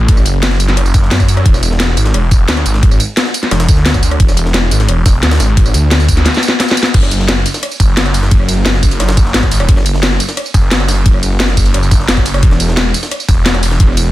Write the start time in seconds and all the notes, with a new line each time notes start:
Already playing: A1
0.08 kick, closed hi-hat, ride
0.17 cross-stick, tambourine
0.26 F#1, closed hi-hat, ride, tambourine
0.43 snare, closed hi-hat, ride
0.51 snare
0.60 closed hi-hat, ride, tambourine
0.69 snare, closed hi-hat
0.77 cross-stick, closed hi-hat, ride
0.86 tambourine
0.94 kick, snare, closed hi-hat, ride, tambourine
1.03 snare
1.11 F#2, snare, closed hi-hat, open hi-hat
1.20 kick, cross-stick, closed hi-hat, tambourine
1.28 closed hi-hat, ride, tambourine
1.37 cross-stick, closed hi-hat
1.46 E1, kick, closed hi-hat, ride
1.54 cross-stick, snare, tambourine
1.63 closed hi-hat, ride, tambourine
1.71 snare
1.80 snare, closed hi-hat, ride
1.97 G#1, closed hi-hat, ride, tambourine
2.06 snare, closed hi-hat
2.14 E1, cross-stick, closed hi-hat, ride
2.31 kick, closed hi-hat, ride, tambourine
2.48 D2, snare, closed hi-hat, ride
2.57 cross-stick, closed hi-hat
2.66 G#1, closed hi-hat, ride, tambourine
2.74 snare
2.83 kick, closed hi-hat, ride
2.91 cross-stick, tambourine
3.00 closed hi-hat, ride, tambourine
3.17 snare, closed hi-hat, ride
3.26 snare
3.34 closed hi-hat, ride, tambourine
3.43 snare, closed hi-hat
3.51 E1, cross-stick, snare, closed hi-hat, ride
3.60 snare, ride, tambourine
3.69 D2, kick, snare, closed hi-hat, ride, tambourine
3.77 snare
3.86 snare, closed hi-hat, open hi-hat
3.94 kick, cross-stick, closed hi-hat, tambourine
4.03 closed hi-hat, ride, tambourine
4.11 cross-stick, closed hi-hat
4.20 E1, kick, closed hi-hat, ride
4.28 cross-stick, snare, tambourine
4.37 closed hi-hat, ride, tambourine
4.46 snare
4.54 snare, closed hi-hat, ride
4.71 G#1, closed hi-hat, ride, tambourine
4.80 snare, closed hi-hat
4.88 E1, cross-stick, closed hi-hat, ride
5.06 kick, snare, closed hi-hat, open hi-hat, tambourine
5.23 D2, snare, closed hi-hat, ride
5.31 cross-stick, snare, closed hi-hat, open hi-hat
5.40 G#1, snare, closed hi-hat, ride, tambourine
5.57 kick, closed hi-hat, ride
5.66 cross-stick, tambourine
5.74 D2, closed hi-hat, ride, tambourine
5.91 snare, closed hi-hat, ride
6.00 snare, tambourine
6.08 kick, closed hi-hat, ride, tambourine
6.17 snare, closed hi-hat
6.26 snare, closed hi-hat, ride
6.34 snare, tambourine
6.43 closed hi-hat, tambourine
6.49 snare
6.60 snare, closed hi-hat, open hi-hat
6.68 snare, closed hi-hat, tambourine
6.77 closed hi-hat, ride, tambourine
6.83 snare, closed hi-hat
6.94 F#1, kick, closed hi-hat, crash, ride
7.03 cross-stick, snare
7.11 closed hi-hat, ride, tambourine
7.20 snare
7.29 snare, closed hi-hat, ride, tambourine
7.46 closed hi-hat, ride, tambourine
7.54 snare, closed hi-hat, tambourine
7.63 cross-stick, closed hi-hat, ride
7.71 tambourine
7.80 F#1, kick, closed hi-hat, ride, tambourine
7.97 snare, closed hi-hat, ride
8.06 cross-stick, closed hi-hat
8.14 open hi-hat, ride, tambourine
8.23 snare
8.31 F#1, kick, closed hi-hat, ride
8.40 cross-stick
8.49 closed hi-hat, ride, tambourine
8.66 snare, closed hi-hat, ride, tambourine
8.74 snare
8.83 F#1, kick, closed hi-hat, ride, tambourine
8.91 closed hi-hat, tambourine
9.00 cross-stick, snare, closed hi-hat, ride
9.09 snare, ride, tambourine
9.17 kick, snare, closed hi-hat, ride, tambourine
9.26 snare
9.34 G#1, snare, closed hi-hat, open hi-hat
9.43 kick, cross-stick, closed hi-hat
9.51 open hi-hat, ride, tambourine
9.60 cross-stick, closed hi-hat
9.69 F#1, kick, closed hi-hat, ride
9.77 cross-stick, snare
9.86 closed hi-hat, ride, tambourine
9.94 snare
10.03 snare, closed hi-hat, ride, tambourine
10.20 closed hi-hat, ride, tambourine
10.29 snare, closed hi-hat, tambourine
10.37 cross-stick, closed hi-hat, ride
10.46 tambourine
10.54 F#1, kick, closed hi-hat, ride, tambourine
10.71 snare, closed hi-hat, ride
10.80 cross-stick, closed hi-hat
10.88 snare, open hi-hat, ride, tambourine
11.06 F#1, kick, closed hi-hat, ride
11.14 cross-stick
11.23 closed hi-hat, ride, tambourine
11.40 snare, closed hi-hat, ride, tambourine
11.49 snare
11.57 F#1, kick, closed hi-hat, ride, tambourine
11.66 closed hi-hat, tambourine
11.74 cross-stick, closed hi-hat, ride
11.83 tambourine
11.91 kick, snare, closed hi-hat, ride, tambourine
12.00 snare
12.09 F#1, snare, closed hi-hat, open hi-hat
12.17 kick, cross-stick, closed hi-hat
12.26 open hi-hat, ride, tambourine
12.34 cross-stick, closed hi-hat
12.43 E1, kick, closed hi-hat, ride
12.51 cross-stick, snare
12.60 closed hi-hat, ride, tambourine
12.69 snare
12.77 snare, closed hi-hat, ride, tambourine
12.94 closed hi-hat, ride, tambourine
13.03 snare, closed hi-hat, tambourine
13.11 cross-stick, closed hi-hat, ride
13.20 tambourine
13.29 E1, kick, closed hi-hat, ride, tambourine
13.46 snare, closed hi-hat, ride
13.54 cross-stick, closed hi-hat
13.63 open hi-hat, ride, tambourine
13.71 snare
13.80 E1, kick, closed hi-hat, ride
13.89 cross-stick
13.97 closed hi-hat, ride, tambourine